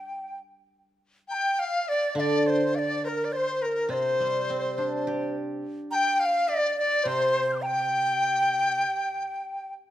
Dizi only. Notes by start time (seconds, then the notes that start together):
Already playing: G5
1.28 G5
1.59 F5
1.88 D5
2.18 D5
2.47 C5
2.75 D5
3.05 A#4
3.24 D5
3.32 C5
3.62 A#4
3.89 C5
5.91 G5
6.20 F5
6.49 D5
6.79 D5
7.08 C5
7.50 F6 G6
7.55 C6 D6
7.62 G5 A#5